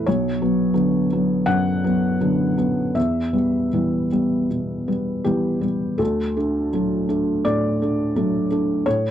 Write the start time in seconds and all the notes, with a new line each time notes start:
0.06 B1 C#5
0.42 F#3 B3
0.74 D3 F#3 B3
1.13 F#3 B3
1.46 F#2 F#5
1.84 F#3 B3
2.20 D3 F#3 B3
2.57 F#3 B3
2.95 E2 E5
3.33 G3 B3
3.73 E3 G3 B3
4.12 G3 B3
4.50 B2
4.88 G3 B3
5.24 E3 G3 B3 G4
5.61 G3 B3
5.98 D2 A4
6.37 A3 D4
6.73 F#3 A3 D4
7.09 A3 D4
7.45 A2 D5
7.82 A3 D4
8.16 F#3 A3 D4
8.51 A3 D4
8.86 A2 C#5